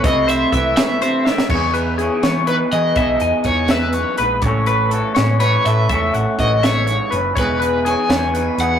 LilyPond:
<<
  \new Staff \with { instrumentName = "Overdriven electric guitar" } { \time 6/8 \key e \major \tempo 4. = 82 dis''8 e''4 e''4 r8 | r2 b'8 dis''8~ | dis''4 cis''8 b'4 r8 | r2 cis''8 e''8~ |
e''4 dis''8 cis''4 r8 | b'4 gis''4. fis''8 | }
  \new Staff \with { instrumentName = "Clean electric guitar" } { \time 6/8 \key e \major cis''8 c''8 e''4 c''8 e''8 | cis''8 b'8 gis'8 cis''8 b'4 | e''8 gis''4 e''8 cis''8 b'8 | cis''8 b'8 a'8 cis''8 b'4 |
e''8 fis''4 e''8 cis''8 b'8 | cis''8 b'8 gis'8 cis''8 b'4 | }
  \new Staff \with { instrumentName = "Clean electric guitar" } { \time 6/8 \key e \major << { <a e'>2. | <b dis' gis'>4 cis'16 dis'16 b8 dis'8 gis'8 | <b dis' gis'>4 dis'2 | <cis' fis' a'>4 fis'8 cis'8 fis'8 a'8 |
<cis' fis' a'>4 fis'2 | <b dis' gis'>4 cis'16 dis'16 b8 dis'8 gis'8 | } \\ { <c e>4 e8 b,8 c8 dis8 | e,4 e4 b,4 | e,4 e8 e,8 fis,8 gis,8 | a,4 e4 e4 |
a,4 e8 a,8 gis,8 fis,8 | e,4 e4 b,4 | } >> }
  \new Staff \with { instrumentName = "Picked electric bass" } { \clef bass \time 6/8 \key e \major c,4 c,8 r4. | e,4. e4 e8 | b,,8 e,16 r16 e,4. ais,,8 | a,,4. a,4 a,8 |
e,8 a,,16 r16 a,,4. fis,,8 | e,,4. e,4 e,8 | }
  \new DrumStaff \with { instrumentName = "Drums" } \drummode { \time 6/8 <hh bd>8 hh8 <hh bd>8 <hh sn>8 hh8 sn16 sn16 | <cymc bd>8 hh8 hh8 <hh sn>8 hh8 hh8 | <hh bd>8 hh8 <hh bd>8 <hh sn>8 hh8 hh8 | <hh bd>8 hh8 hh8 <hh sn>8 hh8 hh8 |
<hh bd>8 hh8 <hh bd>8 <hh sn>8 hh8 hh8 | <hh bd>8 hh8 hh8 <hh sn>8 hh8 hh8 | }
>>